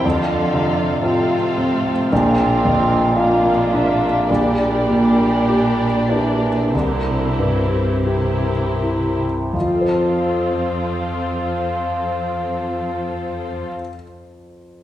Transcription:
0.05 cello section F2, grand piano F2, bassoon D3, viola section C4 F4, violin section A4 F5
0.54 grand piano C3
1.02 cello section A2, bassoon C3, viola section C4 F4, grand piano F4, violin section A4 F5
1.57 grand piano C4
2.11 grand piano A#1, cello section A#2, bassoon C4, viola section D4 F4, violin section A#4 F5
2.65 grand piano F2
3.17 bassoon A#3, viola section D4 F4, grand piano F4, violin section A#4 F5
3.73 grand piano D4, violin section E5
4.29 grand piano A#1, cello section A#2, bassoon G3, viola section D4 G4, violin section A#4 D5
4.90 grand piano A#2
5.50 grand piano G4
6.10 bassoon E3, grand piano D4
6.72 grand piano C2, cello section C3, bassoon D3, viola section E4 G4, violin section A#4 C5
7.39 grand piano G2
8.07 bassoon C3, viola section E4 G4, grand piano G4, violin section A#4 C5
8.82 grand piano E4
9.53 cello section F2, grand piano F2, bassoon F3, viola section C4 F4, violin section A4 C5
9.60 grand piano F3
9.68 grand piano F4
9.74 grand piano A4
9.81 grand piano C5
9.88 grand piano A5

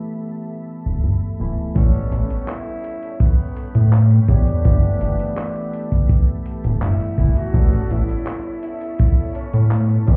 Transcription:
Already playing: tine electric piano E3 A3 B3 G4, analog synth pad A4 E5 A5 B5
0.86 analog synth bass D1
1.04 analog synth bass G1
1.39 analog synth bass D1, tine electric piano E3 A3 B3 E4
1.75 analog synth bass A1, tine electric piano G3 B3 C#4 A4, tenor saxophone C#4, analog synth pad A4 C#5 G5 B5, kick, closed hi-hat
1.94 closed hi-hat
2.12 analog synth bass A1, closed hi-hat
2.30 closed hi-hat
2.48 tenor saxophone E4, clap, closed hi-hat
2.84 closed hi-hat
3.03 closed hi-hat
3.20 tenor saxophone B3, kick, closed hi-hat
3.57 closed hi-hat
3.75 analog synth bass A2, closed hi-hat
3.93 tenor saxophone C#4, clap, closed hi-hat
4.11 closed hi-hat
4.28 analog synth bass E2, tine electric piano G3 B3 G4 C#5, tenor saxophone D4, kick, closed hi-hat
4.47 closed hi-hat
4.64 analog synth bass G1, tine electric piano E3 A3 B3 G4, analog synth pad E5, kick, closed hi-hat
4.83 closed hi-hat
5.01 analog synth bass G1, closed hi-hat
5.20 closed hi-hat
5.37 clap, closed hi-hat
5.56 closed hi-hat
5.73 closed hi-hat
5.92 kick, closed hi-hat
6.09 kick, closed hi-hat
6.46 closed hi-hat
6.64 analog synth bass D1, closed hi-hat
6.82 analog synth bass G1, tenor saxophone E4, clap, closed hi-hat
7.00 closed hi-hat
7.18 analog synth bass D1, tine electric piano E3 A3 B3 E4, kick, closed hi-hat
7.36 tenor saxophone F#4, closed hi-hat
7.53 analog synth bass A1, tine electric piano G3 B3 C#4 A4, analog synth pad C#5 A5 B5, kick, closed hi-hat
7.73 closed hi-hat
7.90 analog synth bass A1, tenor saxophone E4, closed hi-hat
8.09 closed hi-hat
8.27 clap, closed hi-hat
8.63 tenor saxophone E4, closed hi-hat
8.81 closed hi-hat
8.99 kick, closed hi-hat
9.35 tenor saxophone C#4, closed hi-hat
9.53 analog synth bass A2, closed hi-hat
9.71 clap, closed hi-hat
9.90 closed hi-hat
10.07 analog synth bass E2, tine electric piano G3 B3 C#4 G4, tenor saxophone C#4, kick, closed hi-hat

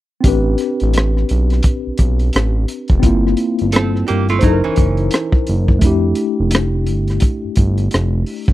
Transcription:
0.21 tine electric piano C4 D4, kick, closed hi-hat
0.25 analog synth bass A1, tine electric piano G4 B4
0.58 cross-stick, closed hi-hat
0.80 analog synth bass A1, closed hi-hat
0.94 closed hi-hat
0.98 cross-stick
1.17 cross-stick
1.29 analog synth bass B1, closed hi-hat
1.50 cross-stick, closed hi-hat
1.63 kick, closed hi-hat
1.87 analog synth bass B1
1.98 analog synth bass B1, kick, closed hi-hat
2.19 closed hi-hat
2.33 analog synth bass A1, cross-stick, closed hi-hat
2.68 closed hi-hat
2.88 analog synth bass F1, kick, closed hi-hat
2.99 tine electric piano C4 E4, kick, closed hi-hat
3.04 analog synth bass G1, tine electric piano A#3 F4
3.27 cross-stick
3.37 closed hi-hat
3.59 analog synth bass G1, closed hi-hat
3.72 hollow-body jazz guitar C4 A4, closed hi-hat
3.76 cross-stick
3.96 cross-stick
4.08 analog synth bass G1, hollow-body jazz guitar A#3 G4, closed hi-hat
4.29 hollow-body jazz guitar A3 F4, closed hi-hat
4.39 hollow-body jazz guitar F#3, tine electric piano D#4 C5, kick, closed hi-hat
4.43 analog synth bass F#1, hollow-body jazz guitar D#4, tine electric piano E4 A4
4.53 tine electric piano A#4
4.64 analog synth bass F#1, hollow-body jazz guitar E3 C#4
4.76 analog synth bass F#1, kick, closed hi-hat
4.97 closed hi-hat
5.11 cross-stick, closed hi-hat
5.32 kick
5.47 analog synth bass F#1, closed hi-hat
5.68 kick
5.79 analog synth bass F1, tine electric piano A3 D4, kick, closed hi-hat
5.84 tine electric piano E4 G4
6.15 closed hi-hat
6.40 analog synth bass F1
6.51 closed hi-hat
6.55 cross-stick
6.87 analog synth bass G1, closed hi-hat
7.08 cross-stick, closed hi-hat
7.20 kick, closed hi-hat
7.45 analog synth bass G1
7.56 analog synth bass G1, kick, closed hi-hat
7.78 closed hi-hat
7.91 analog synth bass F1, cross-stick, closed hi-hat
8.26 open hi-hat
8.46 analog synth bass F1, kick, closed hi-hat

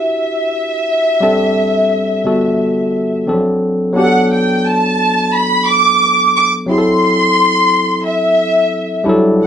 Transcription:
Already playing: tine electric piano D4 E4 F#4 G4, violin section E5
1.20 tine electric piano G3 C4 D4 A4
2.24 tine electric piano D3 G3 B3 F#4 A4
3.27 tine electric piano F3 C4 D4 A4
3.33 tine electric piano F#3
3.93 tine electric piano F#3 B3 D4
3.97 tine electric piano G4, violin section F#5
4.04 tine electric piano A4
4.32 violin section G5
4.67 violin section A5
5.34 violin section B5
5.67 violin section D6
6.36 violin section D6
6.66 tine electric piano F#3 C4 E4, violin section C6
6.71 tine electric piano G#4
6.78 tine electric piano A4
8.06 violin section E5
9.04 tine electric piano F#3 G3 D4 E4
9.09 tine electric piano A4
9.43 violin section F#5

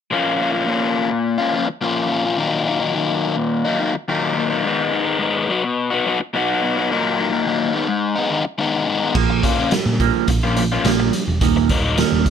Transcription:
0.11 overdriven electric guitar A#2 F3 A#3 C#4 F4
0.39 overdriven electric guitar F3 A#3 C#4 F4
0.53 overdriven electric guitar A#3 C#4 F4
0.66 overdriven electric guitar A#2 F3 A#3 C#4 F4
1.11 muted overdriven electric guitar stroke
1.38 overdriven electric guitar A#3 C#4 F4
1.53 overdriven electric guitar F3 A#3 C#4 F4
1.68 muted overdriven electric guitar stroke
1.81 overdriven electric guitar A#2 F3 A#3 C#4 F4
2.09 overdriven electric guitar F3 A#3 C#4 F4
2.24 overdriven electric guitar A#3 C#4 F4
2.37 overdriven electric guitar D#2 A#2 D#3 F#3 A#3 D#4
2.65 overdriven electric guitar D#3 F#3 A#3 D#4
2.80 overdriven electric guitar D#3 F#3 A#3 D#4
2.94 overdriven electric guitar D#2 A#2 D#3 F#3 A#3 D#4
3.37 muted overdriven electric guitar stroke
3.64 overdriven electric guitar D#3 F#3 A#3 D#4
3.79 overdriven electric guitar D#3 F#3 A#3 D#4
3.95 muted overdriven electric guitar stroke
4.08 overdriven electric guitar D#2 A#2 D#3 F#3 A#3 D#4
4.35 overdriven electric guitar D#3 F#3 A#3 D#4
4.50 overdriven electric guitar D#3 F#3 A#3 D#4
4.64 overdriven electric guitar G#2 D#3 G#3 B3 D#4
4.91 overdriven electric guitar D#3 G#3 B3 D#4
5.05 overdriven electric guitar G#3 B3 D#4
5.19 overdriven electric guitar G#2 D#3 G#3 B3 D#4
5.48 overdriven electric guitar B2 F#3 B3 D#4 F#4
5.64 muted overdriven electric guitar stroke
5.90 overdriven electric guitar B3 D#4 F#4
6.06 overdriven electric guitar F#3 B3 D#4 F#4
6.20 muted overdriven electric guitar stroke
6.33 overdriven electric guitar B2 F#3 B3 D#4 F#4
6.62 overdriven electric guitar F#3 B3 D#4 F#4
6.77 overdriven electric guitar B3 D#4 F#4
6.90 overdriven electric guitar D#2 A#2 D#3 F#3 A#3 D#4
7.18 overdriven electric guitar D#3 F#3 A#3 D#4
7.31 overdriven electric guitar D#3 F#3 A#3 D#4
7.46 overdriven electric guitar D#2 A#2 D#3 F#3 A#3 D#4
7.73 overdriven electric guitar G#2 D#3 G#3 B3 D#4
7.89 muted overdriven electric guitar stroke
8.16 overdriven electric guitar G#3 B3 D#4
8.30 overdriven electric guitar D#3 G#3 B3 D#4
8.44 muted overdriven electric guitar stroke
8.58 overdriven electric guitar G#2 D#3 G#3 B3 D#4
8.86 overdriven electric guitar D#3 G#3 B3 D#4
9.00 overdriven electric guitar G#3 B3 D#4
9.14 picked electric bass A#1, clean electric guitar A#2 F3 A#3, kick, crash
9.30 muted overdriven electric guitar stroke
9.43 clean electric guitar A#2 F3, overdriven electric guitar F3 A#3 C#4 F4, kick, closed hi-hat
9.59 overdriven electric guitar F3 A#3 C#4 F4
9.71 clean electric guitar A#2 F3, muted overdriven electric guitar stroke, snare, closed hi-hat
9.86 picked electric bass A#2
10.00 clean electric guitar A#2 F3 A#3, kick, closed hi-hat
10.28 picked electric bass A#1, clean electric guitar A#2, muted overdriven electric guitar stroke, kick, closed hi-hat
10.43 overdriven electric guitar F3 A#3 C#4 F4
10.57 clean electric guitar A#2 F3, closed hi-hat
10.72 overdriven electric guitar F3 A#3 C#4 F4
10.85 picked electric bass A#1, clean electric guitar A#2 F3 A#3, snare, closed hi-hat
10.99 muted overdriven electric guitar stroke
11.13 clean electric guitar A#2 F3, closed hi-hat
11.28 picked electric bass E1
11.41 picked electric bass D#1, clean electric guitar D#2 A#2 D#3, kick, closed hi-hat
11.56 muted overdriven electric guitar stroke
11.69 clean electric guitar D#2, overdriven electric guitar D#3 F#3 A#3 D#4, kick, closed hi-hat
11.84 overdriven electric guitar D#3 F#3 A#3 D#4
11.97 clean electric guitar D#2 A#2 D#3, muted overdriven electric guitar stroke, snare, closed hi-hat
12.12 picked electric bass D#1
12.26 clean electric guitar D#2 A#2, kick, closed hi-hat

